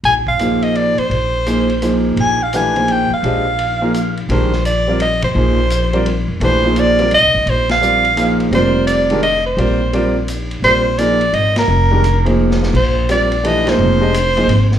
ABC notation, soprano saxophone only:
X:1
M:3/4
L:1/16
Q:"Swing" 1/4=171
K:Bbmix
V:1 name="Soprano saxophone"
a2 f4 e2 d2 c2- | c8- c2 z2 | a2 f2 a4 g2 f2- | f8- f2 z2 |
c4 d4 e2 c2- | c8- c2 z2 | c4 d4 e4 | c2 f8 z2 |
c4 d4 e2 c2- | c6- c z4 z | c4 d4 e2 B2- | B8 z4 |
c4 d4 e2 c2- | c8- c2 z2 |]